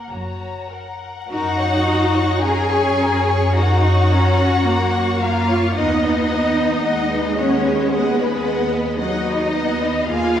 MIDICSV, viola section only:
0, 0, Header, 1, 2, 480
1, 0, Start_track
1, 0, Key_signature, 6, "major"
1, 0, Tempo, 1181102
1, 531, Time_signature, 4, 2, 24, 8
1, 531, Tempo, 1119403
1, 1971, Tempo, 1081081
1, 4517, End_track
2, 0, Start_track
2, 0, Title_t, "Viola section"
2, 0, Program_c, 0, 48
2, 0, Note_on_c, 0, 58, 44
2, 49, Note_off_c, 0, 58, 0
2, 532, Note_on_c, 0, 63, 99
2, 1000, Note_off_c, 0, 63, 0
2, 1020, Note_on_c, 0, 61, 76
2, 1496, Note_off_c, 0, 61, 0
2, 1497, Note_on_c, 0, 63, 93
2, 1734, Note_off_c, 0, 63, 0
2, 1739, Note_on_c, 0, 61, 91
2, 1975, Note_off_c, 0, 61, 0
2, 1975, Note_on_c, 0, 58, 82
2, 2216, Note_off_c, 0, 58, 0
2, 2221, Note_on_c, 0, 58, 82
2, 2458, Note_off_c, 0, 58, 0
2, 2458, Note_on_c, 0, 59, 85
2, 2935, Note_on_c, 0, 56, 90
2, 2936, Note_off_c, 0, 59, 0
2, 3891, Note_off_c, 0, 56, 0
2, 3897, Note_on_c, 0, 54, 66
2, 4134, Note_on_c, 0, 59, 77
2, 4135, Note_off_c, 0, 54, 0
2, 4368, Note_off_c, 0, 59, 0
2, 4371, Note_on_c, 0, 58, 86
2, 4517, Note_off_c, 0, 58, 0
2, 4517, End_track
0, 0, End_of_file